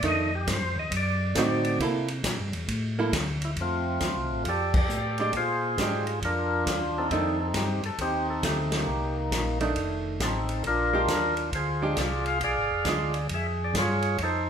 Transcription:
0.03 F2 D#3 A3 D4, kick, ride
0.08 D#5
0.35 G4
0.47 G2, kick, snare, hi-hat pedal, ride
0.53 C5
0.61 F2
0.76 D#2 D#5
0.91 F#2, kick, ride
0.97 D5
1.35 A2 D3 C4 D#4 F#4, kick, snare, hi-hat pedal, ride
1.65 ride
1.79 C3 A#3 E4 A4, kick, ride
2.08 ride
2.24 A#2, kick, snare, hi-hat pedal, ride
2.39 G2
2.53 E2, ride
2.68 A2, kick, ride
2.99 A#3 E4 A4
3.12 D2, kick, snare, hi-hat pedal, ride
3.42 E4, ride
3.56 F2, kick, ride
3.61 A3 C4 F4
4.00 D#2, kick, snare, hi-hat pedal, ride
4.16 C2
4.31 A1
4.45 F2 G4, kick, ride
4.49 A4 D5
4.74 G4 A4 D5, kick, crash
4.89 A2, hi-hat pedal
5.18 G#3 D4 G4 D5, ride
5.33 A#2 C5, kick, ride
5.37 F4 G#4
5.77 G#2 G#3 D4 G4, kick, snare, hi-hat pedal, ride
6.07 ride
6.22 F2 D4 F4 A#4, kick, ride
6.66 D#2, kick, snare, hi-hat pedal, ride
6.98 C4 D#4 A4
7.10 F2 D#3 A3 D4, kick, ride
7.41 A4
7.54 G2 G4, kick, snare, hi-hat pedal, ride
7.83 G2 A4, ride
7.98 D#2 C4 D#4 G4, kick, ride
8.30 A4
8.42 D2 A3, kick, snare, hi-hat pedal, ride
8.47 G4
8.72 snare, ride
8.77 A#3 D#4 G4
8.87 C2
9.31 A#1, kick, snare, hi-hat pedal, ride
9.60 D#3 A3 D4, ride
9.75 F1, kick, ride
10.20 A1 A4, kick, snare, hi-hat pedal, ride
10.24 C4 D#4
10.49 ride
10.64 A#1 D4 F4 A#4, kick, ride
10.93 G#3 D4 G4
11.08 D#2, kick, snare, hi-hat pedal, ride
11.37 ride
11.52 D2 F4 G#4 C5, kick, ride
11.82 G#3 D4 G4
11.96 C2 D5, kick, snare, hi-hat pedal, ride
12.26 F5, ride
12.41 B1 G#4 D5 F5, kick, ride
12.56 G#1
12.71 F1
12.85 D2 G#3 D4 F4, kick, snare, hi-hat pedal, ride
13.14 ride
13.29 F2, kick, ride
13.34 G#4 E5
13.64 D5
13.74 G2, kick, snare, hi-hat pedal, ride
13.78 F4 G#4 C#5
14.02 ride
14.18 F2, kick, ride
14.23 D#4 A4 C5

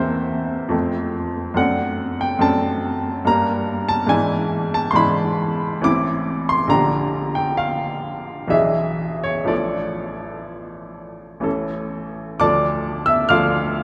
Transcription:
Already playing: E2 A#3 C4 C5 E5 G5
0.69 F2 A3 C4
1.54 F#2 A3 C4 D4 F#5
2.21 G5
2.39 F#2 A3 C4 D4 A5
3.25 G2 G3 A#3 D4 A#5
3.89 A5
4.07 G#2 E3 D4 E4 G#5
4.74 A5
4.91 G#2 E3 C6
4.95 D4 E4 B5
5.81 A1 E3 C4 E4 D6
6.49 C6
6.67 A#1 D3 D4 G4 A#5
7.35 G5
7.57 F5
8.48 B1 E3 D4 G#4 E5
9.24 C#5
9.44 A1 F3 D4 A4 D5
11.40 A1 E3 C#4 A4
12.40 D2 F3 D4 A4 D5 A5 D6
13.06 E5 E6
13.29 D2 F3 D4 A4 F5 D6 F6

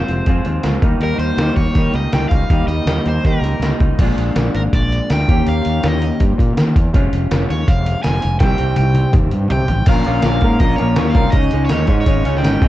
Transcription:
Already playing: F3 G#3 C4 F4 C5
0.08 F1, closed hi-hat
0.26 F2 F3 G#3 C4 F4, kick, closed hi-hat
0.45 D#2 G#3 C4 F4, closed hi-hat
0.63 C#2 F3 G#3 C4 F4, snare, closed hi-hat, tambourine
0.81 D#2 D#3 G3 A#3 D#4, kick, closed hi-hat
1.00 D#2 D#3 G3 A#3 D#4 A#4, closed hi-hat
1.18 D#2 G3 A#3 D#4 C5, closed hi-hat
1.37 D#2 D#3 G3, snare, closed hi-hat, tambourine
1.41 A#3 D#4
1.56 D#2 C#5, kick, closed hi-hat
1.74 D#3 G3 A#3 D#4, kick, closed hi-hat
1.94 C#2 A#3 D#4 D#5, closed hi-hat
1.98 G3
2.13 C#2 D#3 G3 A#3 D#4 G5, snare, closed hi-hat, tambourine
2.29 C#2 D#4 F5, kick, closed hi-hat
2.33 G3 A#3
2.50 D#2 D#3 G3 A#3 D#4, kick, closed hi-hat
2.67 D#2 A#3 D#4 D#5, closed hi-hat
2.71 G3
2.86 D#2 D#3 G3 A#3, snare, closed hi-hat, tambourine
2.90 D#4
3.06 D#2 C5, closed hi-hat
3.24 D#3 G3 A#3 D#4 A#4, kick, closed hi-hat
3.41 C#2 G3 A#3 D#4, closed hi-hat
3.60 C#2 D#3 G3, snare, closed hi-hat, tambourine
3.64 A#3 D#4
3.80 C#2 G3 A#3 D#4, kick, closed hi-hat
3.99 A#1 A#2 F3 G#3 D4 F4, kick, closed hi-hat, crash
4.17 A#1, closed hi-hat
4.36 A#1, snare, closed hi-hat, tambourine
4.54 G#1 A#4, closed hi-hat
4.73 A#1 D5, kick, closed hi-hat
4.92 closed hi-hat
5.10 D2 G5, snare, closed hi-hat, tambourine
5.28 D#2 D#3 A#3 C#4 G4, kick, closed hi-hat
5.46 D#2 F5, closed hi-hat
5.65 D#2, closed hi-hat
5.83 D#2, snare, closed hi-hat, tambourine
5.88 D#5
6.02 closed hi-hat
6.20 G2, kick, closed hi-hat
6.38 A#2, kick, closed hi-hat
6.57 D#3, snare, closed hi-hat, tambourine
6.76 E2, kick, closed hi-hat
6.93 F1 F3 G#3 C#4 F4, kick, closed hi-hat
7.13 F1, closed hi-hat
7.31 F1, snare, closed hi-hat, tambourine
7.50 D#2 C#5, closed hi-hat
7.68 F1 F5, kick, closed hi-hat
7.86 closed hi-hat
8.03 F1 G#5, snare, closed hi-hat, tambourine
8.22 F1, closed hi-hat
8.40 C2 C3 D#3 G3 C4 G4 G5, kick, snare, closed hi-hat
8.58 C2, closed hi-hat
8.76 C2 G5, closed hi-hat, high tom
8.95 closed hi-hat, high tom
9.13 D#2, kick, closed hi-hat, mid tom
9.31 G2, closed hi-hat
9.50 C3 G5, closed hi-hat, floor tom
9.68 A1, closed hi-hat, floor tom
9.86 A#1 A#2 F3 A#3 C#4 F4 F5, kick, closed hi-hat, crash
9.90 A#4
10.05 A#1 A#2 F3 A#3 C#4 F4 A#4, closed hi-hat
10.22 A#1 A#2 F3 A#3 C#4 F4 A#4 F5, snare, closed hi-hat, tambourine
10.41 G#2 A#2 F3 A#3 C#4 F4 A#4, kick, closed hi-hat
10.60 A#1 A#2 F3 A#3 C#4 F4 A#4 D#5, kick, closed hi-hat
10.76 A#2 F3 A#3 C#4 C#5, closed hi-hat
10.80 A#1 F4 A#4
10.96 D#2 A#2 F3 A#3 C#4 F4 A#4, snare, closed hi-hat, tambourine
11.10 F5
11.14 C2 A#2 F3 A#3 C#4 F4 A#4, kick, closed hi-hat
11.30 C#2 C#3 D#5, kick, closed hi-hat
11.35 G#3 C#4 D#4
11.51 C#2 C#3 G#3 C#4 D#4, closed hi-hat
11.65 C#5, closed hi-hat, tambourine
11.70 D#2 C#3 G#3 C#4 D#4, snare
11.87 G#2 C#3 G#3 C#4 D#4, kick, closed hi-hat
12.01 C#5
12.06 G#1 C#3 G#3 C#4 D#4, kick, closed hi-hat
12.25 C#2 C#3 G#3 C#4 D#4, closed hi-hat
12.35 G5, snare
12.43 G#1 C#3 G#3 C#4 D#4, snare, closed hi-hat, tambourine
12.61 G#1 G#2 D#3 G#3 C4 D#4, kick, closed hi-hat

